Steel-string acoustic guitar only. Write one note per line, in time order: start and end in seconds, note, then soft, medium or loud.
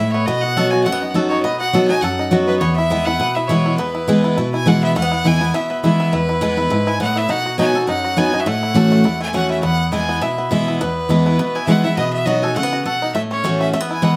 0.00 0.26 A2 medium
0.28 0.83 B2 loud
0.57 0.84 F#3 medium
0.57 0.85 B3 medium
0.57 0.85 D#4 loud
0.57 0.85 F#4 loud
0.86 1.42 F#2 medium
1.14 1.43 F#3 medium
1.14 1.43 B3 medium
1.14 1.43 D#4 medium
1.14 1.43 F#4 medium
1.44 2.00 B2 medium
1.73 1.89 F#3 medium
1.73 1.89 B3 loud
1.73 1.89 D#4 loud
1.73 1.88 F#4 medium
1.89 2.03 D#4 soft
1.89 2.02 F#4 medium
2.02 2.58 F#2 medium
2.31 2.59 F#3 loud
2.31 2.60 B3 medium
2.31 2.60 D#4 medium
2.31 2.60 F#4 loud
2.61 3.17 E2 loud
2.90 3.06 E3 medium
2.90 3.06 G#3 medium
2.90 3.06 B3 loud
2.90 3.05 E4 loud
3.06 3.20 B3 soft
3.06 3.19 E4 medium
3.20 3.76 B2 medium
3.49 3.77 E3 loud
3.49 3.77 G#3 medium
3.49 3.78 B3 loud
3.49 3.78 E4 medium
3.78 4.34 E2 medium
4.08 4.36 E3 medium
4.08 4.36 G#3 loud
4.08 4.36 B3 loud
4.08 4.36 E4 medium
4.38 4.93 B2 medium
4.66 4.94 E3 medium
4.66 4.94 G#3 medium
4.66 4.94 B3 medium
4.66 4.95 E4 loud
4.96 5.52 E2 medium
5.24 5.40 E3 medium
5.24 5.40 G#3 medium
5.24 5.41 B3 loud
5.24 5.40 E4 loud
5.41 5.54 B3 soft
5.41 5.53 E4 medium
5.54 6.10 B2 medium
5.83 6.11 E3 medium
5.83 6.11 G#3 medium
5.83 6.12 B3 medium
5.83 6.12 E4 medium
6.13 6.68 E2 medium
6.41 6.57 E3 loud
6.41 6.57 G#3 loud
6.41 6.57 B3 medium
6.41 6.56 E4 loud
6.57 6.71 B3 soft
6.57 6.70 E4 medium
6.70 6.98 G#2 medium
7.00 7.28 A2 medium
7.29 7.85 B2 medium
7.58 7.74 F#3 medium
7.58 7.74 B3 medium
7.58 7.74 D#4 loud
7.58 7.73 F#4 loud
7.74 7.88 D#4 soft
7.74 7.87 F#4 medium
7.87 8.43 F#2 medium
8.17 8.32 F#3 medium
8.17 8.32 B3 loud
8.17 8.33 D#4 loud
8.17 8.31 F#4 medium
8.33 8.46 D#4 soft
8.33 8.45 F#4 medium
8.46 9.02 A2 medium
8.74 9.03 E3 medium
8.74 9.03 A3 loud
8.74 9.03 C#4 medium
8.74 9.04 F#4 loud
9.04 9.60 E2 medium
9.33 9.61 E3 medium
9.33 9.62 A3 medium
9.33 9.62 C#4 loud
9.33 9.62 F#4 medium
9.63 10.19 E2 medium
9.92 10.20 E3 medium
9.92 10.21 G#3 loud
9.92 10.21 B3 medium
9.92 10.21 E4 loud
10.21 10.78 B2 medium
10.51 10.79 E3 loud
10.51 10.79 G#3 medium
10.51 10.79 B3 loud
10.51 10.80 E4 loud
10.81 11.37 E2 loud
11.09 11.37 E3 medium
11.09 11.38 G#3 medium
11.09 11.38 B3 medium
11.09 11.38 E4 loud
11.39 11.95 B2 loud
11.67 11.83 E3 medium
11.67 11.84 G#3 medium
11.67 11.84 B3 medium
11.67 11.82 E4 loud
11.84 11.98 B3 soft
11.84 11.97 E4 medium
11.97 12.53 B2 loud
12.26 12.42 F#3 medium
12.26 12.42 B3 medium
12.26 12.42 D#4 loud
12.26 12.41 F#4 loud
12.42 12.56 D#4 soft
12.42 12.55 F#4 medium
12.56 12.84 C#3 medium
12.86 13.14 B2 medium
13.15 13.71 A2 medium
13.44 13.72 E3 medium
13.44 13.72 A3 loud
13.44 13.73 C#4 loud
13.44 13.73 F#4 loud
13.73 14.16 E2 loud
14.02 14.16 E3 medium
14.02 14.16 G#3 loud
14.02 14.16 B3 medium
14.02 14.16 E4 medium